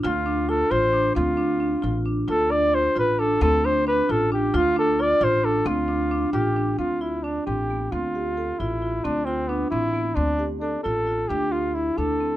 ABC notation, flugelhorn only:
X:1
M:5/8
L:1/8
Q:1/4=133
K:Ddor
V:1 name="Flugelhorn"
F2 A c2 | F4 z | A d c B A | A c B A G |
F A d c A | F3 G2 | F E D G2 | F3 E2 |
D C B, E2 | D2 D A2 | G F E A2 |]